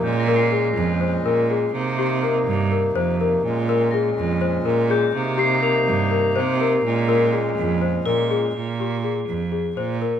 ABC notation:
X:1
M:7/8
L:1/16
Q:1/4=123
K:Bbdor
V:1 name="Crotales"
g' b' c''8- c''3 z | z12 z2 | z4 b'8 g'2- | g'2 c''2 f''8- f''2- |
f'' z8 z a''4- | a''2 z12 |]
V:2 name="Celesta"
B2 B2 A4 c2 B2 A2 | z2 G2 B4 B2 c2 B2- | B2 B2 A4 c2 B2 A2 | z2 G2 B4 B2 c2 B2- |
B2 B2 A4 c2 B2 A2 | z2 G2 A4 A2 c2 B2 |]
V:3 name="Harmonium" clef=bass
[B,,A,D]12- [B,,A,D]2 | [C,B,E]12- [C,B,E]2 | [B,,A,D]12- [B,,A,D]2 | [C,B,E]12- [C,B,E]2 |
[B,,A,D]12- [B,,A,D]2 | z12 z2 |]
V:4 name="Cello" clef=bass
B,,6 F,,4 B,,4 | C,6 G,,4 F,,4 | B,,6 F,,4 B,,4 | C,6 G,,4 C,4 |
B,,6 F,,4 B,,4 | B,,6 F,,4 B,,4 |]